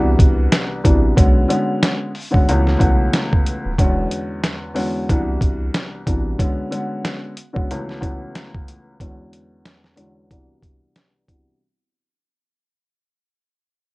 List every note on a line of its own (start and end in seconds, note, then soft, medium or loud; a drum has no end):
0.00 0.16 C2 loud
0.00 0.78 C2 medium
0.00 0.79 E3 medium
0.00 0.79 G3 medium
0.00 0.79 B3 medium
0.00 0.79 D4 medium
0.00 0.79 F#4 loud
0.19 0.48 C2 loud
0.19 kick loud
0.19 closed hi-hat medium
0.52 snare loud
0.52 closed hi-hat medium
0.84 1.13 A1 medium
0.84 1.15 C2 medium
0.84 1.15 E3 medium
0.84 1.15 G3 medium
0.84 1.15 B3 medium
0.84 1.16 D4 medium
0.84 1.16 F#4 medium
0.84 kick medium
0.84 closed hi-hat medium
1.16 1.46 B1 loud
1.16 1.47 D3 medium
1.16 1.48 G#3 medium
1.16 1.48 B3 medium
1.16 1.48 C#4 medium
1.16 1.48 F#4 medium
1.16 kick loud
1.16 closed hi-hat loud
1.49 2.10 D3 loud
1.49 2.10 G#3 medium
1.49 2.11 B3 medium
1.49 2.11 C#4 medium
1.49 2.11 F#4 medium
1.49 closed hi-hat medium
1.83 snare loud
1.83 closed hi-hat medium
2.15 open hi-hat medium
2.31 2.46 D3 medium
2.31 2.47 G#3 medium
2.31 2.47 B3 medium
2.31 2.47 C#4 medium
2.31 2.47 F#4 loud
2.31 kick loud
2.48 2.76 C#2 loud
2.48 2.77 C#2 loud
2.48 2.78 E3 medium
2.48 2.78 A3 medium
2.48 2.78 B3 medium
2.48 2.79 C#4 medium
2.48 2.79 F#4 loud
2.48 closed hi-hat medium
2.67 snare soft
2.79 3.09 B1 medium
2.79 3.71 C#2 medium
2.79 3.71 E3 medium
2.79 3.71 A3 medium
2.79 3.71 B3 medium
2.79 3.72 C#4 medium
2.79 3.72 F#4 loud
2.79 kick loud
2.79 closed hi-hat medium
3.13 snare loud
3.13 closed hi-hat medium
3.33 kick loud
3.46 closed hi-hat medium
3.65 3.77 D1 medium
3.78 4.07 E1 loud
3.78 4.69 E2 medium
3.78 4.70 D3 medium
3.78 4.70 G#3 medium
3.78 4.70 B3 medium
3.78 4.70 C#4 medium
3.78 4.70 F#4 loud
3.78 kick loud
3.78 closed hi-hat loud
4.11 closed hi-hat medium
4.44 snare loud
4.44 closed hi-hat medium
4.74 5.08 E2 medium
4.74 5.08 D3 medium
4.74 5.08 G#3 medium
4.74 5.08 B3 medium
4.74 5.09 C#4 medium
4.74 5.09 F#4 loud
4.74 open hi-hat medium
5.09 6.00 C2 medium
5.09 5.38 C2 loud
5.09 6.00 E3 medium
5.09 6.01 G3 medium
5.09 6.01 B3 medium
5.09 6.01 D4 medium
5.09 6.01 F#4 loud
5.09 kick loud
5.09 closed hi-hat medium
5.41 5.70 C2 loud
5.41 kick loud
5.41 closed hi-hat medium
5.74 snare loud
5.74 closed hi-hat medium
6.06 6.35 A1 medium
6.06 6.37 C2 medium
6.06 6.37 E3 medium
6.06 6.37 G3 medium
6.06 6.37 B3 medium
6.06 6.37 D4 medium
6.06 6.38 F#4 medium
6.06 kick medium
6.06 closed hi-hat medium
6.38 6.69 D3 medium
6.38 6.69 G#3 medium
6.38 6.70 B3 medium
6.38 6.70 C#4 medium
6.38 6.70 F#4 medium
6.38 kick loud
6.38 closed hi-hat loud
6.71 7.32 D3 loud
6.71 7.32 G#3 medium
6.71 7.32 B3 medium
6.71 7.33 C#4 medium
6.71 7.33 F#4 medium
6.71 closed hi-hat medium
7.05 snare loud
7.05 closed hi-hat medium
7.37 closed hi-hat medium
7.53 7.68 D3 medium
7.53 7.68 G#3 medium
7.53 7.69 B3 medium
7.53 7.69 C#4 medium
7.53 7.69 F#4 medium
7.53 kick medium
7.71 7.99 C#2 loud
7.71 7.99 E3 medium
7.71 8.00 A3 medium
7.71 8.00 B3 medium
7.71 8.00 C#4 medium
7.71 8.01 F#4 medium
7.71 closed hi-hat medium
7.89 snare soft
8.00 8.93 C#2 medium
8.00 8.93 E3 medium
8.00 8.93 A3 medium
8.00 8.93 B3 medium
8.00 8.93 C#4 medium
8.00 8.93 F#4 loud
8.00 kick loud
8.00 closed hi-hat medium
8.35 snare loud
8.35 closed hi-hat medium
8.54 kick loud
8.68 closed hi-hat medium
9.00 9.91 E2 medium
9.00 9.91 D3 medium
9.00 9.91 G#3 medium
9.00 9.92 B3 medium
9.00 9.92 C#4 medium
9.00 9.92 F#4 loud
9.00 kick loud
9.00 closed hi-hat loud
9.33 closed hi-hat medium
9.66 snare loud
9.66 closed hi-hat medium
9.84 snare soft
9.96 10.30 E2 medium
9.96 10.30 D3 medium
9.96 10.30 G#3 medium
9.96 10.30 B3 medium
9.96 10.30 C#4 medium
9.96 10.31 F#4 loud
9.96 closed hi-hat medium
10.31 11.22 C2 medium
10.31 11.22 E3 medium
10.31 11.22 G3 medium
10.31 11.22 B3 medium
10.31 11.23 D4 medium
10.31 11.23 F#4 medium
10.31 kick loud
10.31 closed hi-hat medium
10.63 kick medium
10.63 closed hi-hat medium
10.96 snare loud
10.96 closed hi-hat medium
11.27 11.58 C2 medium
11.27 11.58 E3 medium
11.27 11.59 G3 medium
11.27 11.59 B3 medium
11.27 11.59 D4 medium
11.27 11.59 F#4 medium
11.27 kick medium
11.27 closed hi-hat medium